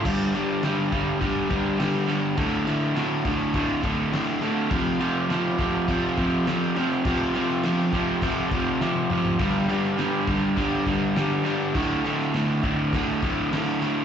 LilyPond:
<<
  \new Staff \with { instrumentName = "Overdriven electric guitar" } { \clef bass \time 4/4 \key g \dorian \tempo 4 = 102 <g, d g>8 <g, d g>8 <g, d g>8 <g, d g>8 <g, d g>8 <g, d g>8 <g, d g>8 <g, d g>8 | <d, a, d>8 <d, a, d>8 <d, a, d>8 <d, a, d>8 <d, a, d>8 <d, a, d>8 <d, a, d>8 <d, a, d>8 | <f, c f>8 <f, c f>8 <f, c f>8 <f, c f>8 <f, c f>8 <f, c f>8 <f, c f>8 <f, c f>8 | <f, c f>8 <f, c f>8 <f, c f>8 <f, c f>8 <f, c f>8 <f, c f>8 <f, c f>8 <f, c f>8 |
<g, d g>8 <g, d g>8 <g, d g>8 <g, d g>8 <g, d g>8 <g, d g>8 <g, d g>8 <g, d g>8 | <d, a, d>8 <d, a, d>8 <d, a, d>8 <d, a, d>8 <d, a, d>8 <d, a, d>8 <d, a, d>8 <d, a, d>8 | }
  \new DrumStaff \with { instrumentName = "Drums" } \drummode { \time 4/4 <cymc bd>8 cymc8 <cymc sn>8 <cymc bd>8 <cymc bd>8 <cymc bd>8 <cymc sn>8 cymc8 | <cymc bd>8 cymc16 sn16 <cymc sn>8 <cymc bd>8 <cymc bd>8 <cymc bd>8 <cymc sn>8 cymc8 | <cymc bd>8 cymc8 <cymc sn>8 <cymc bd>8 <cymc bd>8 <cymc bd>8 <cymc sn>8 cymc16 sn16 | <cymc bd>8 cymc16 sn16 <cymc sn>8 <cymc bd>8 <cymc bd>8 <cymc bd>8 sn16 tommh16 toml16 tomfh16 |
<cymc bd>8 cymc16 sn16 <cymc sn>8 <cymc bd>8 <cymc bd>8 <cymc bd>8 <cymc sn>8 cymc8 | <cymc bd>8 cymc16 sn16 <cymc sn>8 <cymc bd>8 <cymc bd>8 <cymc bd>8 <cymc sn>8 cymc8 | }
>>